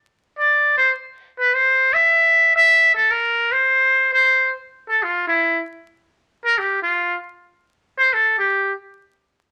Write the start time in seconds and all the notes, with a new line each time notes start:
0.39 D5
0.77 C5
1.39 B4
1.54 C5
1.94 E5
2.56 E5
2.95 A4
3.11 A#4
3.52 C5
4.13 C5
4.89 A4
5.03 F4
5.27 E4
6.45 A#4
6.58 G4
6.83 F4
7.98 C5
8.14 A4
8.38 G4